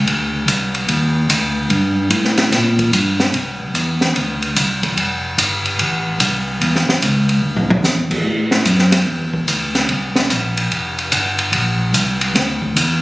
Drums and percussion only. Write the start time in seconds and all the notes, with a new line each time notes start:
0.07 ride
0.48 hi-hat pedal, ride
0.75 ride
0.88 ride
1.30 hi-hat pedal, ride
1.70 ride
2.10 hi-hat pedal, ride
2.25 snare
2.37 snare, ride
2.52 snare, ride
2.79 kick, ride
2.93 hi-hat pedal, ride
3.20 snare
3.34 ride
3.75 hi-hat pedal, ride
4.01 snare
4.16 ride
4.42 ride
4.56 hi-hat pedal, ride
4.83 kick, ride
4.97 ride
5.38 hi-hat pedal, ride
5.65 ride
5.79 ride
6.20 hi-hat pedal, ride
6.61 ride
6.76 snare
6.89 snare
7.02 hi-hat pedal, ride
7.29 ride
7.56 floor tom
7.70 floor tom
7.84 snare, hi-hat pedal
8.11 kick, crash
8.51 snare
8.65 hi-hat pedal, ride
8.79 snare
8.92 snare, ride
9.34 kick
9.48 hi-hat pedal, ride
9.75 snare, ride
9.89 ride
10.16 snare
10.30 hi-hat pedal, ride
10.57 ride
10.71 ride
10.98 ride
11.12 hi-hat pedal, ride
11.38 ride
11.53 ride
11.94 hi-hat pedal, ride
12.21 ride
12.35 snare, ride
12.62 kick
12.76 hi-hat pedal, ride